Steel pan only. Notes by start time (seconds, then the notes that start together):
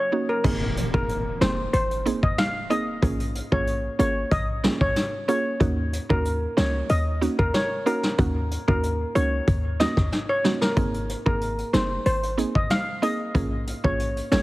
0.29 A#4
0.94 A#4
1.41 C5
1.73 C5
2.23 D#5
2.38 F5
2.70 D#5
3.52 C#5
4.00 C#5
4.32 D#5
4.81 C#5
5.29 C#5
6.10 A#4
6.58 C#5
6.90 D#5
7.39 A#4
7.54 C#5
7.86 A#4
8.68 A#4
9.15 C#5
9.80 D#5
10.29 C#5
10.62 A#4
11.26 A#4
11.74 C5
12.06 C5
12.55 D#5
12.71 F5
13.03 D#5
13.84 C#5
14.32 C#5